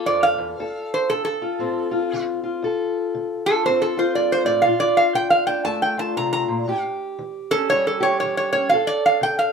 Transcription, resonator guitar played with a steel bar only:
0, 0, Header, 1, 2, 480
1, 0, Start_track
1, 0, Key_signature, -1, "minor"
1, 0, Tempo, 507185
1, 546, Time_signature, 4, 2, 24, 8
1, 9014, End_track
2, 0, Start_track
2, 0, Title_t, "Resonator guitar played with a steel bar"
2, 0, Program_c, 0, 25
2, 60, Note_on_c, 0, 74, 75
2, 217, Note_on_c, 0, 77, 86
2, 218, Note_off_c, 0, 74, 0
2, 843, Note_off_c, 0, 77, 0
2, 888, Note_on_c, 0, 72, 75
2, 1034, Note_off_c, 0, 72, 0
2, 1037, Note_on_c, 0, 69, 84
2, 1169, Note_off_c, 0, 69, 0
2, 1180, Note_on_c, 0, 69, 83
2, 2116, Note_off_c, 0, 69, 0
2, 3277, Note_on_c, 0, 69, 95
2, 3429, Note_off_c, 0, 69, 0
2, 3461, Note_on_c, 0, 72, 81
2, 3601, Note_off_c, 0, 72, 0
2, 3612, Note_on_c, 0, 69, 67
2, 3757, Note_off_c, 0, 69, 0
2, 3775, Note_on_c, 0, 72, 70
2, 3918, Note_off_c, 0, 72, 0
2, 3931, Note_on_c, 0, 74, 67
2, 4076, Note_off_c, 0, 74, 0
2, 4091, Note_on_c, 0, 72, 86
2, 4215, Note_off_c, 0, 72, 0
2, 4219, Note_on_c, 0, 74, 72
2, 4370, Note_on_c, 0, 77, 84
2, 4380, Note_off_c, 0, 74, 0
2, 4535, Note_off_c, 0, 77, 0
2, 4542, Note_on_c, 0, 74, 91
2, 4701, Note_off_c, 0, 74, 0
2, 4704, Note_on_c, 0, 77, 83
2, 4862, Note_off_c, 0, 77, 0
2, 4877, Note_on_c, 0, 79, 89
2, 5016, Note_off_c, 0, 79, 0
2, 5020, Note_on_c, 0, 77, 80
2, 5171, Note_off_c, 0, 77, 0
2, 5174, Note_on_c, 0, 79, 76
2, 5337, Note_off_c, 0, 79, 0
2, 5344, Note_on_c, 0, 81, 75
2, 5502, Note_off_c, 0, 81, 0
2, 5510, Note_on_c, 0, 79, 70
2, 5665, Note_off_c, 0, 79, 0
2, 5671, Note_on_c, 0, 81, 75
2, 5825, Note_off_c, 0, 81, 0
2, 5840, Note_on_c, 0, 82, 73
2, 5976, Note_off_c, 0, 82, 0
2, 5988, Note_on_c, 0, 82, 83
2, 6454, Note_off_c, 0, 82, 0
2, 7108, Note_on_c, 0, 69, 106
2, 7263, Note_off_c, 0, 69, 0
2, 7284, Note_on_c, 0, 73, 84
2, 7432, Note_off_c, 0, 73, 0
2, 7447, Note_on_c, 0, 69, 67
2, 7593, Note_off_c, 0, 69, 0
2, 7596, Note_on_c, 0, 73, 76
2, 7747, Note_off_c, 0, 73, 0
2, 7760, Note_on_c, 0, 73, 72
2, 7909, Note_off_c, 0, 73, 0
2, 7925, Note_on_c, 0, 73, 75
2, 8057, Note_off_c, 0, 73, 0
2, 8069, Note_on_c, 0, 73, 76
2, 8223, Note_off_c, 0, 73, 0
2, 8229, Note_on_c, 0, 77, 89
2, 8383, Note_off_c, 0, 77, 0
2, 8396, Note_on_c, 0, 74, 88
2, 8546, Note_off_c, 0, 74, 0
2, 8572, Note_on_c, 0, 77, 84
2, 8714, Note_off_c, 0, 77, 0
2, 8736, Note_on_c, 0, 79, 94
2, 8876, Note_off_c, 0, 79, 0
2, 8884, Note_on_c, 0, 77, 76
2, 9014, Note_off_c, 0, 77, 0
2, 9014, End_track
0, 0, End_of_file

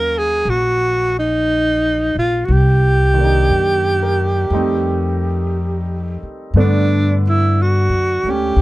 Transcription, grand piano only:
0, 0, Header, 1, 2, 480
1, 0, Start_track
1, 0, Tempo, 1015228
1, 1174, Time_signature, 4, 2, 24, 8
1, 4074, End_track
2, 0, Start_track
2, 0, Title_t, "Grand piano"
2, 0, Program_c, 0, 0
2, 0, Control_c, 0, 64, 127
2, 0, Note_on_c, 0, 54, 46
2, 0, Note_on_c, 0, 58, 42
2, 0, Note_on_c, 0, 61, 41
2, 0, Note_on_c, 0, 77, 52
2, 1174, Note_off_c, 0, 54, 0
2, 1176, Note_off_c, 0, 58, 0
2, 1177, Note_off_c, 0, 61, 0
2, 1180, Note_off_c, 0, 77, 0
2, 1180, Control_c, 0, 64, 0
2, 1257, Control_c, 0, 64, 127
2, 1484, Note_on_c, 0, 51, 40
2, 1503, Note_on_c, 0, 58, 37
2, 1517, Note_on_c, 0, 62, 36
2, 1533, Note_on_c, 0, 63, 43
2, 1660, Note_on_c, 0, 67, 36
2, 1903, Note_on_c, 0, 70, 40
2, 2042, Note_off_c, 0, 67, 0
2, 2125, Note_off_c, 0, 51, 0
2, 2134, Note_off_c, 0, 58, 0
2, 2137, Note_on_c, 0, 55, 45
2, 2140, Note_off_c, 0, 63, 0
2, 2140, Control_c, 0, 64, 0
2, 2142, Note_off_c, 0, 62, 0
2, 2143, Note_on_c, 0, 57, 42
2, 2144, Note_on_c, 0, 60, 41
2, 2147, Note_on_c, 0, 63, 53
2, 2234, Control_c, 0, 64, 127
2, 2240, Note_off_c, 0, 70, 0
2, 3096, Note_off_c, 0, 57, 0
2, 3099, Note_off_c, 0, 55, 0
2, 3101, Note_on_c, 0, 50, 45
2, 3103, Note_off_c, 0, 60, 0
2, 3104, Note_off_c, 0, 63, 0
2, 3104, Control_c, 0, 64, 0
2, 3104, Note_on_c, 0, 57, 42
2, 3106, Note_on_c, 0, 62, 50
2, 3107, Note_on_c, 0, 59, 39
2, 3199, Control_c, 0, 64, 127
2, 3898, Note_off_c, 0, 57, 0
2, 3905, Note_on_c, 0, 57, 35
2, 3918, Note_on_c, 0, 61, 40
2, 4074, Note_off_c, 0, 50, 0
2, 4074, Note_off_c, 0, 57, 0
2, 4074, Note_off_c, 0, 59, 0
2, 4074, Note_off_c, 0, 61, 0
2, 4074, Note_off_c, 0, 62, 0
2, 4074, End_track
0, 0, End_of_file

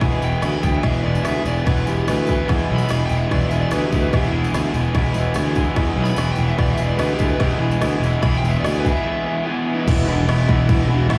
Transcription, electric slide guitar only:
0, 0, Header, 1, 2, 480
1, 0, Start_track
1, 0, Tempo, 409836
1, 23, Time_signature, 4, 2, 24, 8
1, 13094, End_track
2, 0, Start_track
2, 0, Title_t, "Electric slide guitar"
2, 0, Program_c, 0, 29
2, 288, Note_on_c, 0, 79, 100
2, 488, Note_on_c, 0, 83, 102
2, 510, Note_off_c, 0, 79, 0
2, 730, Note_off_c, 0, 83, 0
2, 736, Note_on_c, 0, 79, 98
2, 974, Note_off_c, 0, 79, 0
2, 987, Note_on_c, 0, 76, 84
2, 1203, Note_off_c, 0, 76, 0
2, 1208, Note_on_c, 0, 74, 95
2, 1443, Note_on_c, 0, 76, 104
2, 1451, Note_off_c, 0, 74, 0
2, 1688, Note_off_c, 0, 76, 0
2, 1714, Note_on_c, 0, 74, 73
2, 1933, Note_on_c, 0, 71, 90
2, 1945, Note_off_c, 0, 74, 0
2, 2174, Note_off_c, 0, 71, 0
2, 2215, Note_on_c, 0, 67, 86
2, 2436, Note_off_c, 0, 67, 0
2, 2442, Note_on_c, 0, 71, 110
2, 2903, Note_off_c, 0, 71, 0
2, 3231, Note_on_c, 0, 83, 96
2, 3542, Note_off_c, 0, 83, 0
2, 3579, Note_on_c, 0, 79, 99
2, 3710, Note_on_c, 0, 76, 83
2, 3721, Note_off_c, 0, 79, 0
2, 3866, Note_off_c, 0, 76, 0
2, 3876, Note_on_c, 0, 74, 93
2, 4030, Note_off_c, 0, 74, 0
2, 4092, Note_on_c, 0, 76, 85
2, 4209, Note_off_c, 0, 76, 0
2, 4213, Note_on_c, 0, 74, 91
2, 4359, Note_off_c, 0, 74, 0
2, 4374, Note_on_c, 0, 71, 87
2, 4519, Note_off_c, 0, 71, 0
2, 4523, Note_on_c, 0, 67, 89
2, 4673, Note_off_c, 0, 67, 0
2, 4678, Note_on_c, 0, 71, 95
2, 4831, Note_off_c, 0, 71, 0
2, 4876, Note_on_c, 0, 67, 88
2, 4994, Note_on_c, 0, 64, 98
2, 5010, Note_off_c, 0, 67, 0
2, 5226, Note_off_c, 0, 64, 0
2, 7072, Note_on_c, 0, 83, 111
2, 7384, Note_off_c, 0, 83, 0
2, 7396, Note_on_c, 0, 79, 88
2, 7551, Note_off_c, 0, 79, 0
2, 7583, Note_on_c, 0, 76, 87
2, 7701, Note_off_c, 0, 76, 0
2, 7705, Note_on_c, 0, 74, 107
2, 7864, Note_on_c, 0, 76, 106
2, 7865, Note_off_c, 0, 74, 0
2, 8021, Note_off_c, 0, 76, 0
2, 8026, Note_on_c, 0, 74, 97
2, 8169, Note_on_c, 0, 71, 102
2, 8186, Note_off_c, 0, 74, 0
2, 8337, Note_off_c, 0, 71, 0
2, 8358, Note_on_c, 0, 67, 107
2, 8511, Note_off_c, 0, 67, 0
2, 8526, Note_on_c, 0, 71, 92
2, 8676, Note_off_c, 0, 71, 0
2, 8683, Note_on_c, 0, 67, 94
2, 8811, Note_on_c, 0, 64, 107
2, 8834, Note_off_c, 0, 67, 0
2, 9055, Note_off_c, 0, 64, 0
2, 9628, Note_on_c, 0, 83, 100
2, 9786, Note_off_c, 0, 83, 0
2, 9805, Note_on_c, 0, 79, 104
2, 9940, Note_on_c, 0, 76, 99
2, 9955, Note_off_c, 0, 79, 0
2, 10065, Note_off_c, 0, 76, 0
2, 10070, Note_on_c, 0, 74, 106
2, 10246, Note_off_c, 0, 74, 0
2, 10296, Note_on_c, 0, 71, 101
2, 10418, Note_on_c, 0, 76, 102
2, 10440, Note_off_c, 0, 71, 0
2, 11077, Note_on_c, 0, 59, 92
2, 11414, Note_on_c, 0, 64, 102
2, 11444, Note_off_c, 0, 59, 0
2, 11509, Note_off_c, 0, 76, 0
2, 11978, Note_off_c, 0, 64, 0
2, 12270, Note_on_c, 0, 64, 109
2, 12762, Note_off_c, 0, 64, 0
2, 12762, Note_on_c, 0, 62, 109
2, 12848, Note_on_c, 0, 66, 100
2, 12885, Note_off_c, 0, 62, 0
2, 12980, Note_off_c, 0, 66, 0
2, 13003, Note_on_c, 0, 64, 109
2, 13094, Note_off_c, 0, 64, 0
2, 13094, End_track
0, 0, End_of_file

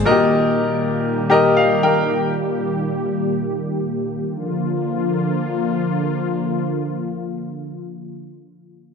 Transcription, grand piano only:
0, 0, Header, 1, 2, 480
1, 0, Start_track
1, 0, Key_signature, -2, "major"
1, 0, Tempo, 500000
1, 8585, End_track
2, 0, Start_track
2, 0, Title_t, "Grand piano"
2, 0, Program_c, 0, 0
2, 0, Control_c, 0, 64, 127
2, 51, Note_on_c, 0, 66, 64
2, 52, Note_on_c, 0, 70, 78
2, 56, Note_on_c, 0, 46, 73
2, 58, Control_c, 0, 64, 0
2, 60, Note_on_c, 0, 75, 92
2, 107, Note_on_c, 0, 67, 81
2, 113, Note_off_c, 0, 66, 0
2, 207, Control_c, 0, 64, 127
2, 734, Note_off_c, 0, 46, 0
2, 957, Note_off_c, 0, 70, 0
2, 961, Note_off_c, 0, 75, 0
2, 984, Note_off_c, 0, 67, 0
2, 1244, Note_on_c, 0, 67, 83
2, 1252, Note_on_c, 0, 70, 74
2, 1260, Note_on_c, 0, 75, 88
2, 1499, Note_off_c, 0, 70, 0
2, 1503, Note_off_c, 0, 75, 0
2, 1503, Note_on_c, 0, 77, 73
2, 1738, Note_off_c, 0, 77, 0
2, 1759, Note_on_c, 0, 79, 72
2, 1764, Note_on_c, 0, 70, 61
2, 1950, Note_off_c, 0, 67, 0
2, 2012, Control_c, 0, 64, 0
2, 2232, Note_off_c, 0, 79, 0
2, 2235, Note_off_c, 0, 70, 0
2, 8585, End_track
0, 0, End_of_file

